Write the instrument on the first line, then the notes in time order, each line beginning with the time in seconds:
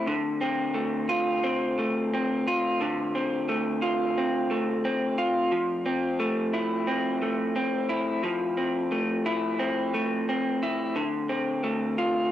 clean electric guitar
Already playing: A3 C4 E4
0.07 D3
0.41 C4
0.74 A3
1.09 F4
1.44 C4
1.79 A3
2.14 C4
2.47 F4
2.81 D3
3.15 C4
3.49 A3
3.82 F4
4.18 C4
4.51 A3
4.85 C4
5.18 F4
5.52 F3
5.86 C4
6.20 A3
6.53 E4
6.87 C4
7.22 A3
7.56 C4
7.89 E4
8.24 F3
8.57 C4
8.92 A3
9.26 E4
9.59 C4
9.94 A3
10.29 C4
10.63 E4
10.96 D3
11.29 C4
11.64 A3
11.98 F4